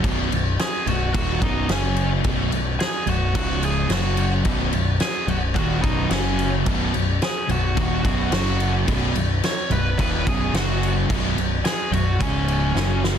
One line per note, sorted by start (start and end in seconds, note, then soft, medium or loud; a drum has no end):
0.03 0.29 B0 loud
0.03 0.30 B1 medium
0.03 0.31 F#2 loud
0.03 0.31 B2 loud
0.03 kick loud
0.03 crash medium
0.31 0.57 B0 medium
0.31 0.53 B1 medium
0.31 0.53 F#2 medium
0.31 crash medium
0.59 0.85 G#4 medium
0.59 0.88 G#5 loud
0.59 snare loud
0.59 crash medium
0.87 1.12 B0 medium
0.87 1.09 B1 medium
0.87 1.09 F#2 medium
0.87 1.13 F#4 medium
0.87 1.14 F#5 loud
0.87 crash medium
1.13 1.40 D#1 loud
1.13 1.40 D#2 loud
1.13 1.40 A#2 loud
1.13 1.41 D#3 loud
1.13 1.40 F#4 medium
1.13 1.43 F#5 loud
1.13 kick loud
1.13 crash medium
1.41 1.67 B0 loud
1.41 1.68 B1 loud
1.41 1.68 F#2 loud
1.41 1.69 B2 medium
1.41 1.68 D#4 medium
1.41 1.71 D#5 medium
1.41 kick loud
1.41 crash medium
1.69 2.20 F#1 loud
1.69 2.23 F#2 medium
1.69 2.24 C#3 loud
1.69 2.24 F#3 loud
1.69 2.08 C#4 medium
1.69 2.09 C#5 medium
1.69 snare loud
1.69 crash medium
1.96 crash medium
2.24 2.50 B0 medium
2.24 2.51 B1 loud
2.24 2.51 F#2 medium
2.24 2.51 B2 loud
2.24 kick loud
2.24 crash medium
2.52 2.77 B0 medium
2.52 2.74 B1 medium
2.52 2.74 F#2 medium
2.52 crash medium
2.79 3.05 G#4 medium
2.79 3.08 G#5 loud
2.79 snare loud
2.79 crash medium
3.07 3.33 B0 medium
3.07 3.29 B1 medium
3.07 3.30 F#2 medium
3.07 3.34 F#4 medium
3.07 3.35 F#5 loud
3.07 crash medium
3.34 3.86 C#1 loud
3.34 3.90 C#2 medium
3.34 3.91 G#2 loud
3.34 3.91 C#3 loud
3.34 3.62 F#4 medium
3.34 3.64 F#5 medium
3.34 kick loud
3.34 crash medium
3.63 3.89 G#4 medium
3.63 3.92 G#5 medium
3.63 crash medium
3.90 4.41 F#1 loud
3.90 4.44 F#2 medium
3.90 4.45 C#3 medium
3.90 4.45 F#3 loud
3.90 4.30 F#4 medium
3.90 4.30 F#5 medium
3.90 snare loud
3.90 crash loud
4.17 crash medium
4.45 4.71 B0 medium
4.45 4.71 B1 medium
4.45 4.71 F#2 medium
4.45 4.72 B2 medium
4.45 kick loud
4.45 crash medium
4.72 4.98 B0 medium
4.72 4.95 B1 medium
4.72 4.95 F#2 medium
4.72 crash medium
5.00 5.27 G#4 medium
5.00 5.29 G#5 loud
5.00 snare loud
5.00 crash medium
5.27 5.53 B0 medium
5.27 5.50 B1 medium
5.27 5.50 F#2 medium
5.27 5.38 F#4 medium
5.27 5.36 F#5 loud
5.27 crash medium
5.55 5.81 D#1 loud
5.55 5.82 D#2 loud
5.55 5.83 A#2 loud
5.55 5.83 D#3 loud
5.55 5.83 F#4 medium
5.55 5.81 F#5 medium
5.55 kick loud
5.55 crash medium
5.81 6.09 B0 loud
5.81 6.10 B1 medium
5.81 6.09 F#2 loud
5.81 6.10 B2 loud
5.81 6.11 D#5 medium
5.81 kick loud
5.81 crash medium
5.85 6.10 D#4 medium
6.10 6.62 F#1 loud
6.10 6.65 F#2 medium
6.10 6.66 C#3 medium
6.10 6.66 F#3 loud
6.10 6.51 C#4 medium
6.10 6.49 C#5 medium
6.10 snare loud
6.10 crash medium
6.39 crash medium
6.66 6.92 B0 loud
6.66 6.92 B1 loud
6.66 6.92 F#2 medium
6.66 6.94 B2 loud
6.66 kick loud
6.66 crash medium
6.93 7.20 B0 medium
6.93 7.16 B1 medium
6.93 7.16 F#2 medium
6.93 crash medium
7.22 7.48 G#4 medium
7.22 7.49 G#5 loud
7.22 snare loud
7.22 crash medium
7.48 7.75 B0 medium
7.48 7.71 B1 medium
7.48 7.71 F#2 medium
7.48 8.02 F#4 medium
7.48 8.04 F#5 loud
7.48 crash medium
7.76 8.03 D#1 loud
7.76 8.03 D#2 medium
7.76 8.03 A#2 loud
7.76 8.04 D#3 loud
7.76 kick loud
7.76 crash medium
8.03 8.30 B0 loud
8.03 8.31 B1 medium
8.03 8.31 F#2 loud
8.03 8.32 B2 loud
8.03 8.31 F#4 medium
8.03 8.32 F#5 medium
8.03 kick loud
8.03 crash medium
8.31 8.83 F#1 loud
8.31 8.86 F#2 loud
8.31 8.86 C#3 medium
8.31 8.87 F#3 loud
8.31 8.72 F#4 medium
8.31 8.72 F#5 medium
8.31 snare loud
8.31 crash medium
8.60 crash medium
8.87 9.13 B0 loud
8.87 9.14 B1 loud
8.87 9.14 F#2 loud
8.87 9.15 B2 loud
8.87 kick loud
8.87 crash medium
9.15 9.41 B0 medium
9.15 9.37 B1 medium
9.15 9.38 F#2 medium
9.15 crash medium
9.43 9.70 C#5 loud
9.43 9.70 C#6 loud
9.43 snare loud
9.43 crash medium
9.70 9.96 B0 medium
9.70 9.93 B1 medium
9.70 9.93 F#2 medium
9.70 9.97 B4 medium
9.70 9.99 B5 loud
9.70 crash medium
9.98 10.25 D#1 loud
9.98 10.25 D#2 medium
9.98 10.25 A#2 loud
9.98 10.26 D#3 loud
9.98 10.25 B4 medium
9.98 10.28 B5 loud
9.98 kick loud
9.98 crash medium
10.25 10.52 B0 loud
10.25 10.53 B1 loud
10.25 10.52 F#2 loud
10.25 10.53 B2 loud
10.25 10.53 G#4 medium
10.25 10.55 G#5 medium
10.25 kick loud
10.25 crash medium
10.53 11.05 F#1 loud
10.53 11.08 F#2 medium
10.53 11.08 C#3 loud
10.53 11.09 F#3 loud
10.53 10.93 F#4 medium
10.53 10.93 F#5 medium
10.53 snare loud
10.53 crash medium
10.83 crash medium
11.08 11.35 B0 loud
11.08 11.35 B1 medium
11.08 11.35 F#2 loud
11.08 11.36 B2 loud
11.08 kick loud
11.08 crash medium
11.36 11.63 B0 medium
11.36 11.59 B1 medium
11.36 11.59 F#2 medium
11.36 crash medium
11.65 11.91 G#4 medium
11.65 11.93 G#5 loud
11.65 snare loud
11.65 crash medium
11.91 12.18 B0 medium
11.91 12.14 B1 medium
11.91 12.15 F#2 medium
11.91 12.19 F#4 medium
11.91 12.21 F#5 loud
11.91 crash medium
12.19 12.72 C#1 medium
12.19 12.75 C#2 medium
12.19 12.75 G#2 loud
12.19 12.75 C#3 loud
12.19 13.00 C#4 medium
12.19 13.00 C#5 medium
12.19 kick loud
12.19 crash medium
12.48 crash medium
12.75 13.18 F#1 loud
12.75 13.18 F#2 medium
12.75 13.18 C#3 medium
12.75 13.18 F#3 medium
12.75 snare medium
13.04 snare loud